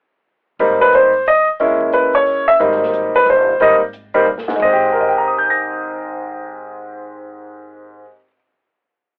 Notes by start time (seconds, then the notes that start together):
0.59 G#1 G3 A#3 C4 D#4, kick, open hi-hat
0.81 B4
0.93 C5, closed hi-hat
1.13 open hi-hat
1.26 D#5, open hi-hat
1.47 muted upright bass stroke
1.60 F#1 G#3 A#3 C#4 E4, kick, open hi-hat
1.81 kick
1.93 B4, closed hi-hat
2.13 C#5, open hi-hat
2.26 open hi-hat
2.48 E5, kick
2.60 G#1 G3 A#3 C4 D#4, kick, open hi-hat
2.72 snare
2.83 snare
2.94 closed hi-hat
3.14 B4, open hi-hat
3.26 G1 C5, open hi-hat
3.60 G#1 G3 A#3 C4 D#4 D#5, kick, open hi-hat
3.93 closed hi-hat
4.14 G3 A#3 C4 D#4, open hi-hat
4.26 mid tom
4.38 snare
4.48 G#2, snare
4.56 G#1 G#3, crash
4.60 D#5, kick
4.64 C4
4.73 G4
4.93 A#4
5.00 D#5
5.09 G5
5.18 A#5
5.28 D#6
5.38 G6
5.50 A#6